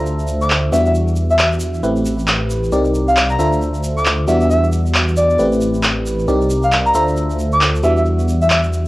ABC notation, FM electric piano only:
X:1
M:4/4
L:1/8
Q:"Swing 16ths" 1/4=135
K:Ephr
V:1 name="FM electric piano"
[DFAce]3 [E,G,B,D^F]4- [E,G,B,DF] | [A,CEGB]4 [C_EG_Bd]3 [DFAc=e]- | [DFAce]3 [E,G,B,D^F]4- [E,G,B,DF] | [A,CEGB]4 [C_EG_Bd]3 [DFAc=e]- |
[DFAce]3 [E,G,B,D^F]4- [E,G,B,DF] |]